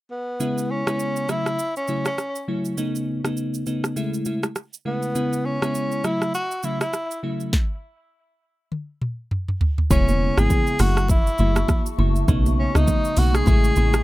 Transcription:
0.11 tenor saxophone B3
0.40 fm electric piano C#3 G#3 B3 E4, shaker
0.58 shaker
0.71 tenor saxophone C#4
0.87 fm electric piano C#3 G#3 B3 E4, cross-stick, shaker
0.99 shaker
1.16 shaker
1.29 fm electric piano C#3 F#3 A3 E4, tenor saxophone E4, cross-stick, shaker
1.46 cross-stick, shaker
1.59 shaker
1.76 tenor saxophone C#4, shaker
1.88 fm electric piano C#3 F#3 A3 E4, shaker
2.05 tenor saxophone C#4, cross-stick, shaker
2.18 cross-stick, shaker
2.36 shaker
2.48 fm electric piano C#3 F#3 A3 E4
2.65 shaker
2.77 fm electric piano C#3 A3 B3 D#4, shaker
2.95 shaker
3.24 fm electric piano C#3 A3 B3 D#4, cross-stick, shaker
3.37 shaker
3.54 shaker
3.66 fm electric piano C#3 A3 B3 D#4, shaker
3.84 cross-stick, shaker
3.96 fm electric piano C#3 G#3 A3 E4, shaker
4.14 shaker
4.25 fm electric piano C#3 G#3 A3 E4, shaker
4.43 cross-stick, shaker
4.56 cross-stick, shaker
4.73 shaker
4.85 fm electric piano C#3 G#3 A3 E4, tenor saxophone B3
5.03 shaker
5.15 fm electric piano C#3 G#3 B3 E4, shaker
5.33 shaker
5.46 tenor saxophone C#4
5.62 fm electric piano C#3 G#3 B3 E4, cross-stick, shaker
5.75 shaker
5.92 shaker
6.04 fm electric piano C#3 F#3 A3 E4, tenor saxophone E4, cross-stick, shaker
6.22 cross-stick, shaker
6.34 tenor saxophone F#4, shaker
6.51 shaker
6.63 fm electric piano C#3 F#3 A3 E4, tenor saxophone E4, shaker
6.81 tenor saxophone E4, cross-stick, shaker
6.93 cross-stick, shaker
7.11 shaker
7.23 fm electric piano C#3 F#3 A3 E4
7.40 shaker
7.53 kick, snare
8.72 high tom
9.02 mid tom
9.31 mid tom
9.48 mid tom
9.61 floor tom
9.78 floor tom
9.90 log drum bass E1, fm electric piano C#3 G#3 B3 E4, tenor saxophone C#4, ambient pad C#6, kick, shaker
10.08 high conga, shaker
10.37 log drum bass G#1, fm electric piano C#3 G#3 B3 E4, tenor saxophone G#4, cross-stick, high conga, shaker
10.50 kick, low conga, shaker
10.67 shaker
10.79 log drum bass F#1, fm electric piano C#3 F#3 A3 E4, ambient pad F#4 E5 A5, tenor saxophone F#4, cross-stick, open hi-hat, high conga, shaker
10.97 cross-stick, shaker
11.08 tenor saxophone E4, kick, low conga, shaker
11.27 shaker
11.38 log drum bass F#1, fm electric piano C#3 F#3 A3 E4, high conga, shaker
11.56 cross-stick, high conga, shaker
11.68 kick, cross-stick, high conga, low conga, shaker
11.86 shaker
11.98 log drum bass F#1, fm electric piano C#3 F#3 A3 E4, high conga
12.16 shaker
12.28 log drum bass B1, fm electric piano C#3 A3 B3 D#4, ambient pad A3, kick, shaker
12.46 high conga, shaker
12.59 tenor saxophone C#4
12.75 log drum bass C#2, fm electric piano C#3 A3 B3 D#4, tenor saxophone D#4, cross-stick, high conga, shaker
12.88 kick, low conga, shaker
13.04 shaker
13.17 log drum bass B1, fm electric piano C#3 A3 B3 D#4, tenor saxophone F#4, open hi-hat, high conga, shaker
13.34 tenor saxophone G#4, cross-stick, shaker
13.46 log drum bass A1, fm electric piano C#3 G#3 A3 E4, ambient pad G#5, kick, low conga, shaker
13.64 shaker
13.76 log drum bass A1, fm electric piano C#3 G#3 A3 E4, high conga, shaker
13.94 cross-stick, high conga, shaker

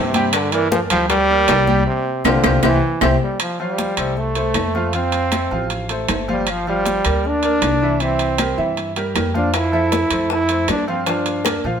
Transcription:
Already playing: upright bass G2, trombone C3
0.14 grand piano G3 G4 G5, high conga, high timbale
0.33 trombone D3, high bongo, high timbale, claves
0.52 trombone E3, grand piano A#3 A#4 D5, high conga, high timbale
0.71 trombone F3, high bongo, high conga
0.90 upright bass D2, trombone F3, grand piano G3 G4 G5, high conga, low conga, high timbale, claves
1.10 trombone G3, high bongo, high conga, low conga, high timbale
1.30 grand piano A#3 A#4 D5, high conga
1.48 upright bass C2, high bongo, low bongo, high conga, high timbale, low timbale, claves
1.67 grand piano G3 G4 G5, high conga
1.86 trombone C3
2.24 upright bass C2, trombone D3, grand piano F4 G4 C5, high bongo, high conga, high timbale, claves
2.44 upright bass C2, grand piano F4 G4 C5, high bongo, high conga, high timbale, claves
2.63 upright bass C2, trombone E3, grand piano E4 G4 C5, high bongo, high conga, high timbale, claves
3.01 upright bass C2, grand piano E4 G4 C5, high bongo, high conga, high timbale, claves
3.23 trombone G3
3.40 trombone F3, high conga, high timbale, claves
3.60 grand piano F3 F4 F5, trombone G3, high conga
3.78 high conga, high timbale, low timbale
3.97 upright bass C2, grand piano A3 A4 C5, high conga, high timbale, claves
4.17 trombone A3, high conga
4.35 grand piano A3 A4 C5, high conga, high timbale
4.54 upright bass F2, high conga, high timbale, low timbale, claves
4.75 grand piano F3 F4 F5, high conga
4.93 grand piano F3 F4 F5, trombone C4, high conga, high timbale
5.12 high conga, high timbale
5.32 grand piano A3 A4 C5, high conga, high timbale, low timbale, claves
5.51 upright bass A1, grand piano F3 F4 F5, high conga
5.70 high conga, high timbale
5.89 grand piano A3 A4 C5, high conga, high timbale
6.08 upright bass G1, grand piano A3 A4 C5, high conga, high timbale, low timbale, claves
6.28 grand piano F3 F4 F5, trombone G3, high conga
6.47 trombone F3, high timbale, claves
6.67 grand piano F3 F4 F5, trombone G3, high conga
6.86 high conga, high timbale, low timbale
7.05 upright bass D2, grand piano A#3 A#4 D5, high conga, high timbale, claves
7.25 trombone D4, high conga
7.43 grand piano A#3 A#4 D5, high conga, high timbale
7.62 upright bass C2, high conga, high timbale, low timbale, claves
7.82 grand piano E3 E4 E5
8.00 grand piano E3 E4 E5, trombone C4, high conga, high timbale
8.19 high conga, high timbale
8.38 grand piano G3 G4 A#4, high conga, high timbale, low timbale, claves
8.57 upright bass G2, grand piano E3 E4 E5, high conga
8.77 high conga, high timbale
8.96 grand piano G3 G4 A#4, high conga, high timbale
9.15 upright bass F2, grand piano G3 G4 A#4, high conga, high timbale, low timbale, claves
9.34 grand piano F3 F4 F5, trombone D4, high conga
9.54 trombone E4, high bongo, high timbale, claves
9.72 grand piano F3 A4 E5, high bongo, high conga
9.92 high bongo, high conga, high timbale, low timbale
10.11 upright bass F2, grand piano A3 A4 C5, high conga, high timbale, claves
10.30 trombone E4, high bongo, high conga
10.49 grand piano A3 A4 C5, high bongo, high conga, high timbale
10.68 upright bass G2, trombone D4, high bongo, low bongo, high conga, high timbale, low timbale, claves
10.88 grand piano F3 F4 F5, trombone C4, high bongo
11.06 grand piano F3 F4 F5, trombone D4, high bongo, high conga, high timbale
11.26 high bongo, high conga, high timbale
11.45 grand piano A#3 A#4 D5, high bongo, high conga, high timbale, low timbale, claves
11.64 upright bass A#2, grand piano F3 F4 F5, high conga

